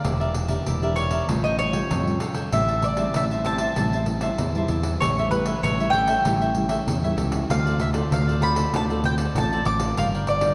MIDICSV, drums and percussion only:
0, 0, Header, 1, 2, 480
1, 0, Start_track
1, 0, Key_signature, 0, "minor"
1, 0, Tempo, 619835
1, 41, Time_signature, 4, 2, 24, 8
1, 8164, End_track
2, 0, Start_track
2, 0, Title_t, "Pandeiro"
2, 35, Note_on_c, 9, 54, 79
2, 113, Note_off_c, 9, 54, 0
2, 163, Note_on_c, 9, 54, 33
2, 240, Note_off_c, 9, 54, 0
2, 267, Note_on_c, 9, 54, 66
2, 344, Note_off_c, 9, 54, 0
2, 375, Note_on_c, 9, 54, 57
2, 452, Note_off_c, 9, 54, 0
2, 514, Note_on_c, 9, 54, 69
2, 592, Note_off_c, 9, 54, 0
2, 642, Note_on_c, 9, 54, 33
2, 719, Note_off_c, 9, 54, 0
2, 744, Note_on_c, 9, 54, 59
2, 822, Note_off_c, 9, 54, 0
2, 856, Note_on_c, 9, 54, 56
2, 934, Note_off_c, 9, 54, 0
2, 996, Note_on_c, 9, 54, 84
2, 1074, Note_off_c, 9, 54, 0
2, 1123, Note_on_c, 9, 54, 33
2, 1201, Note_off_c, 9, 54, 0
2, 1228, Note_on_c, 9, 54, 65
2, 1306, Note_off_c, 9, 54, 0
2, 1341, Note_on_c, 9, 54, 58
2, 1418, Note_off_c, 9, 54, 0
2, 1476, Note_on_c, 9, 54, 79
2, 1554, Note_off_c, 9, 54, 0
2, 1606, Note_on_c, 9, 54, 33
2, 1684, Note_off_c, 9, 54, 0
2, 1704, Note_on_c, 9, 54, 65
2, 1782, Note_off_c, 9, 54, 0
2, 1816, Note_on_c, 9, 54, 58
2, 1893, Note_off_c, 9, 54, 0
2, 1954, Note_on_c, 9, 54, 77
2, 2032, Note_off_c, 9, 54, 0
2, 2078, Note_on_c, 9, 54, 33
2, 2156, Note_off_c, 9, 54, 0
2, 2187, Note_on_c, 9, 54, 57
2, 2264, Note_off_c, 9, 54, 0
2, 2298, Note_on_c, 9, 54, 66
2, 2375, Note_off_c, 9, 54, 0
2, 2432, Note_on_c, 9, 54, 77
2, 2510, Note_off_c, 9, 54, 0
2, 2564, Note_on_c, 9, 54, 33
2, 2641, Note_off_c, 9, 54, 0
2, 2668, Note_on_c, 9, 54, 53
2, 2745, Note_off_c, 9, 54, 0
2, 2775, Note_on_c, 9, 54, 69
2, 2852, Note_off_c, 9, 54, 0
2, 2914, Note_on_c, 9, 54, 78
2, 2991, Note_off_c, 9, 54, 0
2, 3043, Note_on_c, 9, 54, 34
2, 3121, Note_off_c, 9, 54, 0
2, 3145, Note_on_c, 9, 54, 55
2, 3223, Note_off_c, 9, 54, 0
2, 3259, Note_on_c, 9, 54, 69
2, 3337, Note_off_c, 9, 54, 0
2, 3395, Note_on_c, 9, 54, 81
2, 3472, Note_off_c, 9, 54, 0
2, 3523, Note_on_c, 9, 54, 32
2, 3601, Note_off_c, 9, 54, 0
2, 3627, Note_on_c, 9, 54, 61
2, 3704, Note_off_c, 9, 54, 0
2, 3743, Note_on_c, 9, 54, 65
2, 3820, Note_off_c, 9, 54, 0
2, 3885, Note_on_c, 9, 54, 83
2, 3962, Note_off_c, 9, 54, 0
2, 4015, Note_on_c, 9, 54, 34
2, 4092, Note_off_c, 9, 54, 0
2, 4115, Note_on_c, 9, 54, 61
2, 4192, Note_off_c, 9, 54, 0
2, 4225, Note_on_c, 9, 54, 71
2, 4302, Note_off_c, 9, 54, 0
2, 4367, Note_on_c, 9, 54, 79
2, 4445, Note_off_c, 9, 54, 0
2, 4494, Note_on_c, 9, 54, 33
2, 4571, Note_off_c, 9, 54, 0
2, 4592, Note_on_c, 9, 54, 52
2, 4670, Note_off_c, 9, 54, 0
2, 4704, Note_on_c, 9, 54, 68
2, 4781, Note_off_c, 9, 54, 0
2, 4841, Note_on_c, 9, 54, 80
2, 4918, Note_off_c, 9, 54, 0
2, 4969, Note_on_c, 9, 54, 32
2, 5046, Note_off_c, 9, 54, 0
2, 5069, Note_on_c, 9, 54, 54
2, 5146, Note_off_c, 9, 54, 0
2, 5182, Note_on_c, 9, 54, 64
2, 5259, Note_off_c, 9, 54, 0
2, 5326, Note_on_c, 9, 54, 82
2, 5403, Note_off_c, 9, 54, 0
2, 5454, Note_on_c, 9, 54, 33
2, 5531, Note_off_c, 9, 54, 0
2, 5558, Note_on_c, 9, 54, 59
2, 5636, Note_off_c, 9, 54, 0
2, 5667, Note_on_c, 9, 54, 71
2, 5744, Note_off_c, 9, 54, 0
2, 5809, Note_on_c, 9, 54, 81
2, 5887, Note_off_c, 9, 54, 0
2, 5937, Note_on_c, 9, 54, 36
2, 6015, Note_off_c, 9, 54, 0
2, 6037, Note_on_c, 9, 54, 62
2, 6115, Note_off_c, 9, 54, 0
2, 6147, Note_on_c, 9, 54, 69
2, 6225, Note_off_c, 9, 54, 0
2, 6289, Note_on_c, 9, 54, 77
2, 6366, Note_off_c, 9, 54, 0
2, 6419, Note_on_c, 9, 54, 33
2, 6496, Note_off_c, 9, 54, 0
2, 6519, Note_on_c, 9, 54, 55
2, 6597, Note_off_c, 9, 54, 0
2, 6630, Note_on_c, 9, 54, 71
2, 6708, Note_off_c, 9, 54, 0
2, 6765, Note_on_c, 9, 54, 82
2, 6842, Note_off_c, 9, 54, 0
2, 6894, Note_on_c, 9, 54, 33
2, 6972, Note_off_c, 9, 54, 0
2, 6998, Note_on_c, 9, 54, 56
2, 7075, Note_off_c, 9, 54, 0
2, 7108, Note_on_c, 9, 54, 70
2, 7185, Note_off_c, 9, 54, 0
2, 7244, Note_on_c, 9, 54, 85
2, 7322, Note_off_c, 9, 54, 0
2, 7377, Note_on_c, 9, 54, 34
2, 7454, Note_off_c, 9, 54, 0
2, 7475, Note_on_c, 9, 54, 58
2, 7553, Note_off_c, 9, 54, 0
2, 7586, Note_on_c, 9, 54, 72
2, 7663, Note_off_c, 9, 54, 0
2, 7723, Note_on_c, 9, 54, 82
2, 7800, Note_off_c, 9, 54, 0
2, 7855, Note_on_c, 9, 54, 35
2, 7932, Note_off_c, 9, 54, 0
2, 7954, Note_on_c, 9, 54, 61
2, 8031, Note_off_c, 9, 54, 0
2, 8063, Note_on_c, 9, 54, 68
2, 8141, Note_off_c, 9, 54, 0
2, 8164, End_track
0, 0, End_of_file